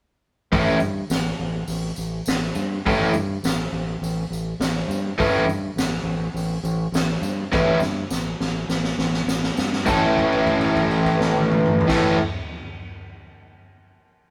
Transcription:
0.52 A1 A2 E3 A3 C#4 E4, kick, open hi-hat
0.80 G2, tambourine
1.10 A1, snare, open hi-hat, tambourine
1.39 A1
1.68 A1, open hi-hat, tambourine
1.96 A1, tambourine
2.26 A1, snare, open hi-hat, tambourine
2.55 G2, tambourine
2.86 A1 A2 E3 A3 C#4 E4, kick, open hi-hat
3.14 G2, tambourine
3.43 A1, snare, open hi-hat, tambourine
3.72 A1
4.01 A1, open hi-hat, tambourine
4.30 A1, tambourine
4.60 A1, snare, open hi-hat, tambourine
4.88 G2, tambourine
5.18 A1 A2 E3 A3 C#4 E4, kick, open hi-hat
5.45 G2
5.49 tambourine
5.76 A1, snare, open hi-hat, tambourine
6.04 A1
6.34 A1, open hi-hat, tambourine
6.63 A1, tambourine
6.92 A1, snare, open hi-hat, tambourine
7.21 G2, tambourine
7.52 A1 A2 E3 A3 C#4 E4, kick, snare, tambourine
7.80 G2, snare, tambourine
8.11 A1, snare, tambourine
8.40 A1, snare, tambourine
8.69 A1, snare, tambourine
8.84 snare
8.98 A1, snare
9.13 snare
9.26 A1, snare, tambourine
9.44 snare
9.57 G2, snare, tambourine
9.73 snare
9.86 A1 A2 E3 A3 C#4 E4 A4, kick, crash, tambourine
10.18 kick, crash
10.32 crash
10.47 kick, crash
10.61 crash
10.76 kick, crash
10.91 crash
11.06 kick, crash
11.21 snare
11.36 high tom
11.51 mid tom
11.66 mid tom
11.80 floor tom
11.87 A1 A2 E3 A3 C#4 E4 A4, kick, snare, crash

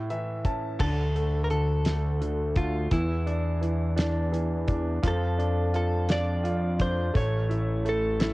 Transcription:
Already playing: A2
0.10 E3 E5, closed hi-hat
0.45 C#4 A5, kick, closed hi-hat
0.80 D2 D3 A4, kick, crash
1.16 A3, closed hi-hat
1.44 A#4
1.50 D3 A4, closed hi-hat
1.85 A3, snare, closed hi-hat
2.21 D3, closed hi-hat
2.56 A3 F4, kick, closed hi-hat
2.91 E2 E3 E4, kick, closed hi-hat
3.27 D4, closed hi-hat
3.61 E3, closed hi-hat
3.97 D4, snare, closed hi-hat
4.32 E3, closed hi-hat
4.67 D4, kick, closed hi-hat
5.03 F2 F3, kick, closed hi-hat
5.08 A4
5.38 D4, closed hi-hat
5.73 F4 A4, closed hi-hat
6.09 D4 D5, snare, closed hi-hat
6.43 F4, closed hi-hat
6.79 D4 C5, kick, closed hi-hat
7.14 A1 A3 C#5, kick, closed hi-hat
7.49 E4, closed hi-hat
7.85 A3, closed hi-hat
7.89 A4
8.20 E4, snare, closed hi-hat

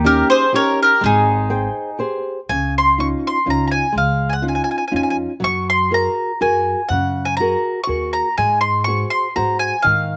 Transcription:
Already playing: D#2
0.04 C#4 D#4 G4 A#4
0.30 G#4 C5
0.53 C#4 D#4 G4 A#4 C#5
0.83 G4 A#4
1.01 G#1 G#3 D#4
1.06 G#4
1.50 G#4 C5 G5
1.99 G4 G#4 C5
2.49 C#2 C#3 G#5
2.78 C6
2.98 C#4 D#4 F4 C#6
3.27 C6
3.46 C#2 C#4 D#4 F4
3.50 A#5
3.68 G#5 A#5
3.92 C#2 G#3
3.98 F5
4.30 F#5 G#5
4.42 C#4 D#4 F4
4.48 G#5
4.55 G#5
4.64 G#5
4.71 G#5
4.78 G#5
4.88 C#4 G#5
4.92 F2 D#4 F4
4.96 G#5
5.03 G#5
5.10 G#5
5.40 F#2 F#3
5.44 C#6
5.70 C6
5.91 F#4 G#4 A#4 A#5
6.41 F#2 F#4 G#4 A#4 G#5
6.89 F#2 C#3 F#5
7.25 G#5
7.37 F#4 A#5
7.41 G#4 A#4
7.84 F#4 C#6
7.88 D#2 G#4 A#4
8.13 A#5
8.38 G#2 G#3 G#5
8.61 C6
8.84 F#4 G#4 C5 C#6
9.10 C6
9.36 G#2 F#4 G#4 C5 A#5
9.59 G#5
9.82 G#2 D#3 F5

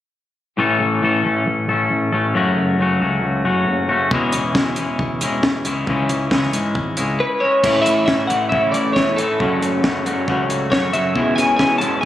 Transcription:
0.57 A1 A2 E3 A3 C#4 A4
0.80 A1
1.02 A1 E3 A3 C#4 A4
1.24 A1 A3 C#4 A4
1.46 A1
1.68 A1 A3 C#4 A4
1.90 A1
2.12 A1 A3 C#4 A4
2.34 F#1 F#2 C#3 F#3 A3 C#4 F#4
2.55 F#1
2.78 F#1 F#3 A3 C#4
2.82 F#4
3.00 C#2 F#3 A3 C#4 F#4
3.21 C#2
3.44 F#1 F#3 A3 C#4 F#4
3.67 F#1
3.88 F#1 F#3 A3 C#4 F#4
4.11 E1 E2 B2 E3 G#3 C#4 E4, kick
4.32 E1, closed hi-hat
4.55 E1 E3 G#3 C#4 E4, kick, snare
4.76 E1 C#4 E4, closed hi-hat
4.81 E3 G#3
4.99 E1, kick
5.21 E1 G#3 C#4 E4, closed hi-hat
5.26 E3
5.43 kick, snare
5.65 C#2 C#3 E3 G#3 C#4 E4, closed hi-hat
5.87 C#2 C#3 E3 G#3 C#4 E4, kick
6.09 C#2, closed hi-hat
6.31 C#2 E3 G#3 C#4 E4, kick, snare
6.43 snare
6.53 G#2 G#3 C#4 E4, closed hi-hat
6.75 G#1, kick
6.97 C#2 G#3 C#4 E4, closed hi-hat
7.20 B4
7.40 G#3 C#4 E4 C#5
7.63 A1 A2 E3 A3 C#4 E4, kick, crash
7.82 A1 E5
7.86 closed hi-hat
8.06 A1 A2 E3 A3 C#4 E4 E5, kick, snare
8.27 A1 A2 E3 A3 C#4 E4 F#5, closed hi-hat
8.49 A1 A2 E3 A3 C#4 E4 E5, kick
8.72 A1 D5, closed hi-hat
8.93 E1 A2 C#5, kick, snare
8.97 E3 A3 C#4 E4
9.16 A1 A2 E3 A3 C#4 E4 A4, closed hi-hat
9.40 F#1 F#2 C#3 F#3 A3 C#4 F#4, kick
9.62 F#1, closed hi-hat
9.83 F#1 F#2 C#3 F#3 A3 C#4 F#4, kick, snare
10.05 F#1 F#2 C#3 F#3 A3 C#4 F#4, closed hi-hat
10.27 C#2 F#2 C#3 F#3 A3 C#4 F#4, kick
10.50 closed hi-hat
10.70 F#1 F#2 C#3 F#3 A3 C#4 F#4 C#5, kick, snare
10.92 F#1 F#2 C#3 F#3 A3 C#4 F#4 E5, closed hi-hat
11.15 E1 E2 B2 E3 G#3 B3 C#4 E4 G#4, kick
11.36 E1 G#5, snare, closed hi-hat
11.57 E1 E2 B2 E3 B3 G#4 G#5, kick, snare
11.61 G#3 C#4 E4
11.78 E1 E2 B2 E3 B3 G#4 A5, closed hi-hat
11.83 G#3 C#4 E4
12.01 G#5

